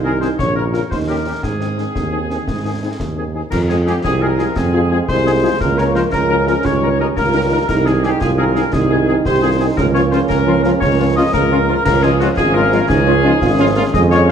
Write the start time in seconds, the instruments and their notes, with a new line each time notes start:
Already playing: tuba C2, euphonium D#4
0.04 french horn section D#3 C4 D#4, trumpet section G#4, woodwind section A#4
0.21 french horn section D#3 C4 D#4, trumpet section G#4, woodwind section C5, snare
0.39 tuba A#1, euphonium C#4, woodwind section C#5, concert bass drum, snare
0.56 french horn section C#3 C#4 F4, woodwind section A#4, trumpet section A#4
0.73 french horn section C#3 C#4 F4, woodwind section A#4, trumpet section A#4, snare
0.90 tuba D#2, euphonium D#4, woodwind section C5, concert bass drum, snare
1.08 french horn section D#3 C#4 D#4, trumpet section G4, woodwind section A#4
1.26 french horn section D#3 C#4 D#4, trumpet section G4
1.43 tuba G#2, euphonium C4, woodwind section G#4, concert bass drum, snare
1.60 french horn section D#3 C4 D#4, trumpet section G#4, snare
1.77 french horn section D#3 C4 D#4, trumpet section G#4, snare
1.96 tuba D#2, concert bass drum, snare
2.12 french horn section D#3 C4 D#4, trumpet section G#4
2.30 french horn section D#3 C4 D#4, trumpet section G#4, snare
2.48 tuba G#2, concert bass drum, snare
2.65 french horn section D#3 C4 D#4, trumpet section G#4
2.82 french horn section D#3 C4 D#4, trumpet section G#4
3.00 tuba D#2, concert bass drum, snare
3.17 french horn section D#3 C4 D#4, trumpet section G#4
3.34 french horn section D#3 C4 D#4, trumpet section G#4
3.51 tuba F2, trombone section F3 G#3, euphonium F4, woodwind section A#4, concert bass drum, snare, crash
3.69 french horn section G#3 C4 F4, trumpet section G#4, woodwind section G#4, snare
3.86 french horn section G#3 C4 F4, woodwind section G4, trumpet section G#4, snare
4.04 tuba C2, euphonium C4, woodwind section G#4, concert bass drum, snare
4.21 french horn section G#3 C4 F4, trumpet section G#4, woodwind section A#4
4.39 french horn section G#3 C4 F4, trumpet section G#4, snare
4.56 tuba F2, euphonium C4, woodwind section G#4, concert bass drum, snare
4.73 french horn section G#3 C4 F4, trumpet section G#4
4.91 french horn section G#3 C4 F4, trumpet section G#4, woodwind section G#4
5.08 tuba C2, euphonium G#3, woodwind section C5, concert bass drum, snare
5.26 french horn section G#3 C4 F4, trumpet section G#4
5.43 french horn section G#3 C4 F4, trumpet section G#4
5.60 tuba C#2, trombone section F3 A#3, euphonium A#3, woodwind section A#4, concert bass drum, snare
5.77 french horn section F3 C#4 F4, trumpet section A#4, woodwind section C#5, snare
5.95 french horn section F3 C#4 F4, trumpet section A#4, woodwind section C5, snare
6.12 tuba C#2, euphonium C#4, woodwind section A#4, concert bass drum, snare
6.29 french horn section F3 C#4 F4, trumpet section A#4
6.47 french horn section F3 C#4 F4, trumpet section A#4, woodwind section A#4, snare
6.65 tuba C#2, trombone section D#3 G3, woodwind section C#5, concert bass drum, snare
6.81 french horn section G3 D#4, trumpet section A#4
6.99 french horn section G3 D#4, trumpet section A#4, woodwind section D#5
7.17 tuba C#2, euphonium F4, woodwind section A#4, concert bass drum, snare
7.33 french horn section G3 D#4, trumpet section A#4
7.51 french horn section G3 D#4, trumpet section A#4
7.68 tuba C2, trombone section D#3 G#3, euphonium D#4, woodwind section A#4, concert bass drum, snare, crash
7.86 french horn section D#3 C4 D#4, trumpet section G#4, woodwind section G#4, snare
8.03 french horn section D#3 C4 D#4, woodwind section G4, trumpet section G#4, snare
8.21 tuba C2, euphonium F4, woodwind section G#4, concert bass drum, snare
8.38 french horn section D#3 C4 D#4, trumpet section G#4, woodwind section A#4
8.55 french horn section D#3 C4 D#4, trumpet section G#4, snare
8.73 tuba C2, euphonium D#4, woodwind section G#4, concert bass drum, snare
8.90 french horn section D#3 C4 D#4, trumpet section G#4
9.08 french horn section D#3 C4 D#4, trumpet section G#4, woodwind section G#4
9.25 tuba C2, euphonium G4, woodwind section C5, concert bass drum, snare
9.43 french horn section D#3 C4 D#4, euphonium F4, trumpet section G#4
9.60 french horn section D#3 C4 D#4, euphonium D#4, trumpet section G#4
9.78 tuba C#2, trombone section F3 A#3, euphonium C#4, woodwind section A#4, concert bass drum, snare
9.94 french horn section F3 C#4, trumpet section F4, woodwind section C#5, snare
10.12 french horn section F3 C#4, trumpet section F4, woodwind section C5, snare
10.29 tuba C#2, woodwind section A#4, concert bass drum, snare
10.47 french horn section F3 C#4, trumpet section F4
10.64 french horn section F3 C#4, trumpet section F4, woodwind section A#4, snare
10.81 tuba C#2, woodwind section C#5, concert bass drum, snare
10.99 french horn section F3 C#4, trumpet section F4
11.16 french horn section F3 C#4, trumpet section F4, woodwind section D#5
11.33 tuba C#2, woodwind section A#4, concert bass drum, snare
11.52 french horn section F3 C#4, trumpet section F4
11.69 french horn section F3 C#4, trumpet section F4
11.86 tuba C#2, trombone section F3 C#4, woodwind section A#4, concert bass drum, snare, crash
12.03 french horn section F3 G#3 C#4, trumpet section F4, woodwind section G#4, snare
12.20 french horn section F3 G#3 C#4, trumpet section F4, woodwind section F#4, snare
12.37 tuba G#1, euphonium F4, woodwind section G#4, concert bass drum, snare
12.54 french horn section F3 G#3 C#4, trumpet section F4, woodwind section A#4
12.72 french horn section F3 G#3 C#4, trumpet section F4, snare
12.88 tuba C#2, euphonium D#4, woodwind section G#4, concert bass drum, snare
13.07 french horn section F3 G#3 C#4, euphonium C#4, trumpet section F4
13.24 french horn section F3 G#3 C#4, euphonium D#4, trumpet section F4
13.42 tuba G#1, euphonium F4, concert bass drum, snare
13.58 french horn section F3 G#3 C#4, euphonium C#4, trumpet section F4
13.76 french horn section F3 G#3 C#4, euphonium A#3, trumpet section F4
13.94 tuba F2, euphonium G#3, trombone section G#3 C#4, woodwind section D#5, concert bass drum, snare
14.11 french horn section F3 G#3 C#4, trumpet section F4, woodwind section C#5, snare
14.28 french horn section F3 G#3 C#4